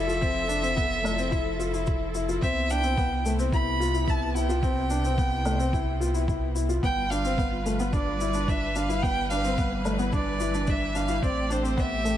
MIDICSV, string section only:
0, 0, Header, 1, 2, 480
1, 0, Start_track
1, 0, Key_signature, 0, "major"
1, 0, Tempo, 550459
1, 200, Time_signature, 4, 2, 24, 8
1, 10616, End_track
2, 0, Start_track
2, 0, Title_t, "String section"
2, 0, Program_c, 0, 48
2, 0, Note_on_c, 0, 53, 83
2, 0, Note_on_c, 0, 64, 73
2, 0, Note_on_c, 0, 69, 93
2, 2084, Note_off_c, 0, 53, 0
2, 2086, Note_off_c, 0, 69, 0
2, 2112, Note_on_c, 0, 59, 80
2, 2113, Note_on_c, 0, 48, 93
2, 5921, Note_off_c, 0, 48, 0
2, 5921, Note_off_c, 0, 59, 0
2, 5924, Note_off_c, 0, 64, 0
2, 5958, Note_on_c, 0, 55, 79
2, 5960, Note_on_c, 0, 71, 89
2, 5963, Note_on_c, 0, 65, 76
2, 7862, Note_off_c, 0, 65, 0
2, 7879, Note_on_c, 0, 52, 78
2, 9764, Note_off_c, 0, 55, 0
2, 9765, Note_off_c, 0, 71, 0
2, 9780, Note_off_c, 0, 52, 0
2, 9793, Note_on_c, 0, 57, 85
2, 9793, Note_on_c, 0, 60, 79
2, 9796, Note_on_c, 0, 67, 99
2, 10616, Note_off_c, 0, 57, 0
2, 10616, Note_off_c, 0, 60, 0
2, 10616, Note_off_c, 0, 67, 0
2, 10616, End_track
0, 0, End_of_file